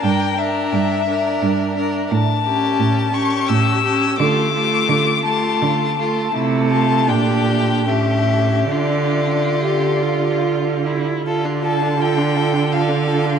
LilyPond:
<<
  \new Staff \with { instrumentName = "Violin" } { \time 3/4 \key d \minor \tempo 4 = 83 g''8 e''2 r8 | a''4. cis'''8 e'''4 | d'''4. a''4. | r8 a''8 g''4 e''4 |
d''2 r4 | r8 a''8 g''4 f''4 | }
  \new Staff \with { instrumentName = "Violin" } { \time 3/4 \key d \minor bes'8 bes'4 bes'4 bes'8 | r8 g'4 g'4 g'8 | f'8 f'4 f'4 f'8 | e'8 f'8 g'4 g'4 |
f'2~ f'8. r16 | a'16 f'16 a'16 f'16 a'16 f'16 a'16 f'16 a'16 f'16 a'16 f'16 | }
  \new Staff \with { instrumentName = "Viola" } { \time 3/4 \key d \minor d'8 d'4 d'4 d'8 | r8 cis'4 cis'4 cis'8 | a8 a4 a4 a8 | a4 d'4 cis'4 |
d'4 g'8 f'4 e'8 | f'16 d'16 f'16 d'16 f'16 d'16 f'16 d'16 f'16 d'16 f'16 d'16 | }
  \new Staff \with { instrumentName = "Cello" } { \clef bass \time 3/4 \key d \minor g,4 g,4 g,4 | a,4 a,4 a,4 | d4 d4 d4 | c4 bes,4 a,4 |
d2~ d8. r16 | d2. | }
>>